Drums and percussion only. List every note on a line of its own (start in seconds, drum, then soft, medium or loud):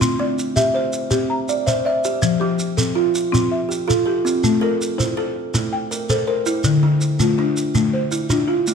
0.01 shekere medium
0.39 shekere medium
0.56 shekere medium
0.93 shekere medium
1.11 shekere medium
1.49 shekere medium
1.67 shekere medium
2.04 shekere medium
2.22 shekere medium
2.59 shekere medium
2.78 shekere medium
3.15 shekere medium
3.34 shekere medium
3.71 shekere medium
3.90 shekere medium
4.27 shekere medium
4.44 shekere medium
4.82 shekere medium
5.00 shekere medium
5.54 shekere medium
5.92 shekere medium
6.10 shekere medium
6.46 shekere medium
6.64 shekere medium
7.01 shekere medium
7.20 shekere medium
7.57 shekere medium
7.75 shekere medium
8.12 shekere medium
8.30 shekere medium
8.67 shekere medium